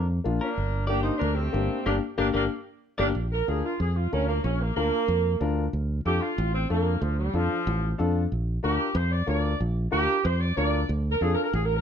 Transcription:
Already playing: F2
0.24 A#1 A#3 D4 F4
0.41 A#3 D4 A#4
0.58 G1
0.87 A#3 D4 G4 D5
1.03 C4 D#4 C5
1.18 D2 A#3 D4 A#4
1.35 C4 G4
1.39 A3
1.53 G1 A#3 D4 G4
1.86 G1 G3 A#3 D4 G4 A#4 D5
2.18 G1 G3 A#3 D4 G4 A#4 D5
2.33 G1 G3 A#3 D4 G4 A#4 D5
2.98 G1 G3 A#3 D4 G4 A#4 D5
3.15 A#1
3.32 A#4
3.47 D2 D4 F4 G#4 A#4
3.64 F4
3.80 F2 G#4
3.96 F4
4.12 D2 C#4 D4 F4 A#4
4.28 A#3
4.44 A#1 C#4
4.60 A#3
4.76 D2 A#3 D4 F4 A#4
5.08 F2
5.40 D2 D4 F4 A#4
5.73 D2
6.05 F2 D4 F4 G4 A4
6.22 F4
6.38 A1
6.53 C4
6.69 F2 A#3 D4 F4 A4
7.02 D2 F3
7.18 G3
7.34 F2 F3 D4 F4 A4
7.67 A1
7.98 F2 D4 F4 A4
8.32 A#1
8.63 D2 D4 F4 G4 A#4
8.95 F2 C5
9.11 D5
9.26 D2 D4 F4 A#4 D5
9.60 A#1
9.91 D2 D4 F4 G4 A#4
10.25 F2 C5
10.41 D5
10.57 D2 D4 F4 A#4 D5
10.89 D2
11.11 A#4
11.21 F2 D4 F4 G#4 A4
11.34 A#4
11.43 A#4
11.53 A1 G#4
11.65 A#4
11.75 A#4

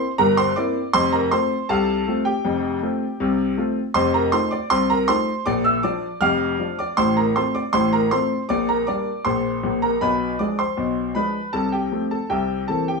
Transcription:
Already playing: C5 C6
0.18 G1 G2 A#4 A#5
0.37 C5 C6
0.56 A#3 C4 E4 D5 D6
0.93 F1 F2 C5 C6
1.13 A#4 A#5
1.31 A3 C4 F4 C5 C6
1.69 C2 C3 A4 F5 A5
2.08 A3 C4 F4
2.25 G4 G5
2.45 F1 F2
2.82 A3 C4 F4
3.20 C2 C3
3.57 A3 C4 F4
3.94 F1 F2 C5 C6
4.14 A#4 A#5
4.32 A3 D#4 F4 C5 C6
4.51 D5 D6
4.70 C2 C3 C5 C6
4.90 A#4 A#5
5.08 A3 D#4 F4 C5 C6
5.46 A#1 A#2 D5 D6
5.65 E5 E6
5.83 F3 D4 F4 D5 D6
6.21 F1 F2 F5 D6 F6
6.59 F3 D4 F4
6.79 D5 D6
6.97 A1 A2 C5 C6
7.17 A#4 A#5
7.36 A3 C4 F4 C5 C6
7.55 D5 D6
7.73 A1 A2 C5 C6
7.93 A#4 A#5
8.11 A3 C4 F4 C5 C6
8.49 A#1 A#2 D5 D6
8.69 A#4 A#5
8.87 G3 A#3 D4 D5 D6
9.25 A#1 A#2 C5 C6
9.63 A#1 A#2
9.82 A#4 A#5
10.01 B1 B2 B4 G#5 B5
10.39 F3 G#3 D4 D5 D6
10.59 C5 C6
10.77 B1 B2
11.15 F3 G#3 D4 B4 B5
11.53 C2 C3 A4 A5
11.72 G4 G5
11.92 F3 A3 C4
12.11 A4 A5
12.30 C2 C3 G4 E5 G5
12.68 E3 A#3 C4 A4 A5
12.88 G4 G5

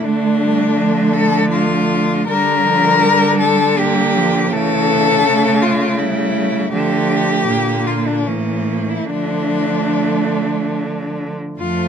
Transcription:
Already playing: A3
0.04 D3 A3 D4
0.40 G3
0.77 F3
1.13 A4
1.50 F4
2.28 D3 G3 A#4
2.67 F3
3.03 G3
3.40 A4
3.77 G3 A#3 G4
4.15 F3
4.52 C#3 E3 A3 A4
5.26 A3
5.62 F4
5.99 G3 E4
6.73 D3 F3 A3 G4
7.47 A#2 D3 A#3
7.87 F4
8.07 D4
8.26 A2 E3 A#3 C#4
8.89 E4
9.09 D3 F3 A3 D4
11.59 F2 F3 A3 F4

